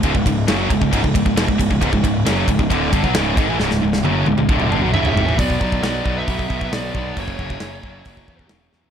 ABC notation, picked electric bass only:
X:1
M:4/4
L:1/16
Q:1/4=135
K:C#phr
V:1 name="Picked electric bass" clef=bass
C,,, C,,, C,,,2 F,,,2 C,,, C,,, C,,, C,,, C,,, C,,, E,,, C,,, C,,, C,,, | C,,, C,,, C,,,2 F,,,2 C,,, C,,, D,,,2 =G,,, B,,, C,,,2 ^G,,, A,,, | C,,, C,,, C,,,2 F,,,2 C,,, C,,, D,,,2 =G,,, B,,, C,,,2 ^G,,, A,,, | B,,,2 B,,,2 B,,,2 B,,,2 B,,,2 B,,,2 B,,,2 B,,,2 |
F,,,2 F,,,2 F,,,2 F,,,2 F,,,2 E,,2 E,,,2 E,,2 |]